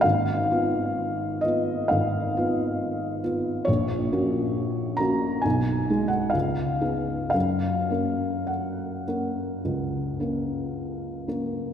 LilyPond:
\new Staff \with { instrumentName = "Felt piano" } { \time 4/4 \key fis \major \tempo 4 = 64 << { f''4. dis''8 f''4. r8 | cis''4. ais''8 gis''8. fis''16 eis''4 | eis''4 fis''2~ fis''8 r8 | } \\ { aes,,8 <ces' f'>4 <ces' f'>8 aes,,8 <ces' f'>4 <ces' f'>8 | ais,,8 <ais cis' fis'>4 <ais cis' fis'>8 b,,8 <gis dis' gis'>8 cis,8 <b dis' gis'>8 | fis,8 <ais cis' ais'>4 <ais cis' ais'>8 cis,8 <ais cis' ais'>4 <ais cis' ais'>8 | } >> }